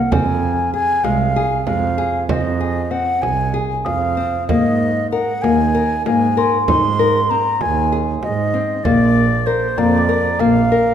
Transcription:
Already playing: flute F#5
0.11 double bass F2, nylon-string guitar C4, flute G#5, frame drum
0.43 frame drum
0.73 nylon-string guitar G#4, flute G#5, frame drum
1.04 double bass C2, nylon-string guitar G#3, flute F5, frame drum
1.36 nylon-string guitar G#4
1.66 double bass F2, nylon-string guitar G#3, flute F5, frame drum
1.98 nylon-string guitar G#4, frame drum
2.29 double bass F2, nylon-string guitar C4, flute D#5, frame drum
2.60 nylon-string guitar G#4, frame drum
2.91 nylon-string guitar C4, flute F#5
3.22 double bass C2, flute G#5, frame drum
3.54 nylon-string guitar G#4
3.85 double bass F2, flute F5, glockenspiel D#6, frame drum
4.17 nylon-string guitar C4, frame drum
4.48 double bass G#2, nylon-string guitar A#3, flute D#5, frame drum
4.81 frame drum
5.12 nylon-string guitar A#4, flute F#5, frame drum
5.42 double bass D#2, nylon-string guitar A#3, flute G#5, frame drum
5.75 nylon-string guitar A#4
6.06 double bass G#2, nylon-string guitar A#3, flute G#5, frame drum
6.37 nylon-string guitar A#4, glockenspiel C6, frame drum
6.68 double bass G#2, nylon-string guitar D#4, flute C6, frame drum
6.99 nylon-string guitar A#4, frame drum
7.30 nylon-string guitar C4, flute A#5, frame drum
7.61 double bass D#2, flute G#5, frame drum
7.92 nylon-string guitar G#4
8.22 double bass G#2, flute D#5, frame drum
8.54 nylon-string guitar C4, frame drum
8.84 double bass A#1, nylon-string guitar A#3, flute D5, frame drum
9.16 frame drum
9.46 nylon-string guitar A#4, flute C5, frame drum
9.78 double bass F2, nylon-string guitar A#3, flute D5, glockenspiel A#5, frame drum
9.99 glockenspiel D6
10.09 nylon-string guitar A#4
10.39 double bass A#1, nylon-string guitar A#3, flute F5, frame drum
10.71 nylon-string guitar A#4, frame drum

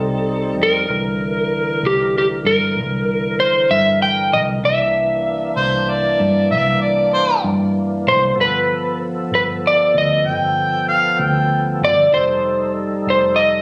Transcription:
Already playing: fingered electric bass C2, tonewheel organ G3 C4 D#4, electric slide guitar A4
0.58 fingered electric bass F2
0.63 electric slide guitar A#4
0.89 fingered electric bass C2, tonewheel organ D3 E3 A#4
1.83 fingered electric bass C2, electric slide guitar G4
2.18 electric slide guitar G4
2.45 fingered electric bass G2, electric slide guitar A#4
2.76 fingered electric bass C2
3.40 electric slide guitar C5
3.71 fingered electric bass G2, electric slide guitar E5
4.02 electric slide guitar G5
4.33 fingered electric bass C2, electric slide guitar D#5
4.63 fingered electric bass C2, tonewheel organ E3 A#3 D4, electric slide guitar E5
5.56 fingered electric bass C2, harmonica C5
5.89 harmonica D5
6.20 fingered electric bass G2
6.51 fingered electric bass C2, harmonica E5
6.59 electric slide guitar D5
6.81 harmonica D5
7.14 harmonica C5
7.44 fingered electric bass G2
8.07 fingered electric bass C2, electric slide guitar C5
8.35 fingered electric bass G1, tonewheel organ F3 B3 A4
8.41 electric slide guitar B4
9.31 fingered electric bass G1, electric slide guitar B4
9.67 electric slide guitar D5
9.94 fingered electric bass D2, electric slide guitar D#5
10.25 fingered electric bass G1, harmonica G5
10.88 harmonica F5
11.19 fingered electric bass D2, harmonica G5
11.81 fingered electric bass G1, electric slide guitar D5
12.11 fingered electric bass F1, tonewheel organ G3 D#4 A4, electric slide guitar C5
13.07 fingered electric bass F1, electric slide guitar C5
13.36 electric slide guitar D#5

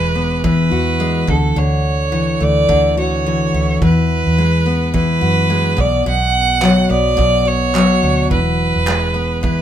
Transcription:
Already playing: fingered electric bass E1, steel-string acoustic guitar E3 G#3, violin B4
0.15 steel-string acoustic guitar B3
0.44 steel-string acoustic guitar E3, violin B4, kick
0.71 fingered electric bass E2, steel-string acoustic guitar F#4
1.00 steel-string acoustic guitar G#3
1.27 fingered electric bass D2, steel-string acoustic guitar D3, violin A4, kick
1.56 fingered electric bass D2, steel-string acoustic guitar D3, violin C#5
2.12 steel-string acoustic guitar E3
2.40 fingered electric bass D2, steel-string acoustic guitar A3, violin D5
2.69 fingered electric bass D2, steel-string acoustic guitar D3, kick
2.97 steel-string acoustic guitar F#4, violin C#5
3.26 steel-string acoustic guitar E3
3.54 fingered electric bass D2, steel-string acoustic guitar E4
3.82 fingered electric bass E2, steel-string acoustic guitar E3, violin B4, kick
4.27 fingered electric bass E2
4.38 steel-string acoustic guitar G#3
4.66 steel-string acoustic guitar B3
4.94 steel-string acoustic guitar E3, violin B4, kick
5.21 fingered electric bass F#2, steel-string acoustic guitar F#4
5.50 steel-string acoustic guitar G#3
5.77 fingered electric bass B1, steel-string acoustic guitar B2, violin D5, kick
6.06 fingered electric bass B1, steel-string acoustic guitar B2, violin F#5
6.62 steel-string acoustic guitar F#3, clap
6.90 fingered electric bass B1, steel-string acoustic guitar B3, violin D5
7.17 fingered electric bass B1, steel-string acoustic guitar B2, kick
7.45 steel-string acoustic guitar F#4, violin C#5
7.74 steel-string acoustic guitar F#3, clap
8.03 fingered electric bass D2, steel-string acoustic guitar D4
8.31 fingered electric bass E1, steel-string acoustic guitar E3, violin B4, kick
8.76 fingered electric bass E1
8.87 steel-string acoustic guitar G#3, clap
9.14 steel-string acoustic guitar B3
9.43 steel-string acoustic guitar E3, violin B4, kick

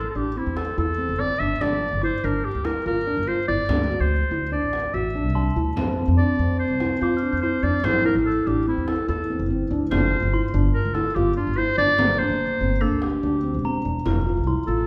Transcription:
Already playing: clarinet A4, glockenspiel C6
0.11 clarinet A4
0.15 upright bass A1, felt piano D4, clarinet G4
0.36 felt piano C4, clarinet E4, frame drum
0.46 upright bass E2
0.57 clarinet A4, frame drum
0.78 upright bass E2, felt piano E4, clarinet A4, frame drum
0.98 felt piano C4
1.09 upright bass G1
1.19 felt piano C4, clarinet D5, frame drum
1.40 upright bass G1, felt piano D4, clarinet E5
1.61 upright bass G1, felt piano D4, clarinet D5, frame drum
1.93 upright bass G1
2.02 felt piano E4, clarinet C5, glockenspiel D6, frame drum
2.24 upright bass G1, felt piano D4, clarinet A#4
2.45 clarinet G4, frame drum
2.55 upright bass D2
2.65 felt piano E4, clarinet A#4, frame drum
2.86 upright bass G1, felt piano F4, clarinet A#4, frame drum
3.07 felt piano D4
3.17 upright bass G1
3.27 felt piano F4, clarinet C5, frame drum
3.48 upright bass G1, felt piano E4, clarinet D5
3.69 upright bass D2, felt piano D4, frame drum
3.90 felt piano F#4
4.00 upright bass D2, clarinet C5
4.31 upright bass D2, felt piano E4, frame drum
4.52 felt piano D4, clarinet D5
4.62 upright bass A1
4.73 frame drum
4.94 upright bass A1, felt piano F#4, clarinet E5
5.15 felt piano D4
5.25 upright bass C2
5.35 felt piano D4, glockenspiel A5 C6
5.56 upright bass D2, felt piano E4, frame drum
5.76 upright bass F2, vibraphone C4, felt piano C4, frame drum
6.08 upright bass F2
6.18 felt piano D4, clarinet D5, frame drum
6.39 upright bass F2, felt piano C4
6.59 clarinet C5, frame drum
6.70 upright bass C2
6.80 felt piano E4, frame drum
7.01 upright bass F2, felt piano F4, clarinet C5, glockenspiel D6, frame drum
7.17 glockenspiel F6
7.22 felt piano D4
7.32 upright bass F2, glockenspiel G6
7.42 felt piano E4, clarinet C5, frame drum
7.63 upright bass F2, felt piano D4, clarinet D5
7.84 upright bass A1, felt piano C4, vibraphone E4, clarinet C5, frame drum
8.05 felt piano E4, clarinet A#4
8.15 upright bass A1
8.26 clarinet A4, frame drum
8.47 upright bass A1, felt piano D4, clarinet G4
8.66 felt piano C4, clarinet E4, frame drum
8.77 upright bass E2
8.88 clarinet A4, frame drum
9.08 upright bass E2, felt piano E4, clarinet A4, frame drum
9.30 felt piano C4
9.39 upright bass G1
9.50 felt piano C4, frame drum
9.71 upright bass D2, felt piano D4
9.91 upright bass G1, felt piano D4, vibraphone F4, clarinet C5, frame drum
10.22 upright bass G1
10.33 felt piano E4, glockenspiel C6, frame drum
10.54 upright bass G1, felt piano D4
10.74 clarinet A#4, frame drum
10.85 upright bass D2
10.94 felt piano E4, clarinet A4, frame drum
11.15 upright bass G1, felt piano F4, clarinet G4, frame drum
11.37 felt piano D4, clarinet F4
11.47 upright bass G1
11.57 felt piano E4, clarinet C5, frame drum
11.78 upright bass G1, felt piano D4, clarinet D5
11.98 upright bass G1, vibraphone A#3, felt piano C4, frame drum
12.19 felt piano D4, clarinet C5
12.30 upright bass G1
12.61 upright bass G1, felt piano C4
12.81 felt piano A#3, vibraphone D4, clarinet A4
12.92 upright bass D2
13.02 clarinet G4, frame drum
13.23 upright bass D2, felt piano D4, frame drum
13.43 felt piano C4, frame drum
13.54 upright bass E1
13.64 felt piano C4, glockenspiel A#5
13.85 upright bass E1, felt piano D4
14.05 upright bass F1, felt piano E4, vibraphone F4, frame drum
14.26 felt piano F4
14.37 upright bass C2
14.47 felt piano E4, glockenspiel C6
14.67 upright bass A1, felt piano F4, clarinet A4

